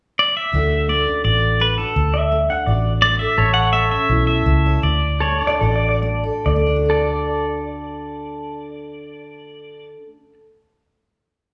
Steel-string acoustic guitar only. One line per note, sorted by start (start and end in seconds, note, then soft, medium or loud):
0.53 0.85 D3 medium
0.53 0.89 A3 medium
0.53 1.07 D4 medium
0.53 1.24 F#4 medium
0.53 3.19 A4 medium
0.89 1.21 A3 medium
1.07 1.94 D4 medium
1.24 1.56 A2 medium
1.24 1.78 F#4 medium
1.60 1.92 A3 medium
1.79 1.94 F#4 medium
1.96 2.28 D3 medium
2.32 2.63 A3 medium
2.50 3.36 D4 medium
2.67 2.99 A2 medium
2.67 3.36 F#4 medium
3.02 3.34 A3 medium
3.20 4.65 A4 medium
3.37 3.69 A2 medium
3.73 4.05 A3 medium
3.91 4.81 C#4 medium
4.09 4.42 E3 medium
4.09 4.83 E4 medium
4.46 4.80 A3 medium
4.66 4.82 C#5 medium
4.83 5.18 D3 medium
5.21 5.57 A3 medium
5.41 6.43 D4 medium
5.61 5.99 A2 medium
5.61 6.43 F#4 soft
6.03 6.41 A3 medium
6.24 6.84 A4 medium
6.46 9.96 D3 medium
6.56 10.06 A3 medium
6.66 10.16 D4 medium
6.76 10.26 F#4 medium
6.86 10.36 A4 medium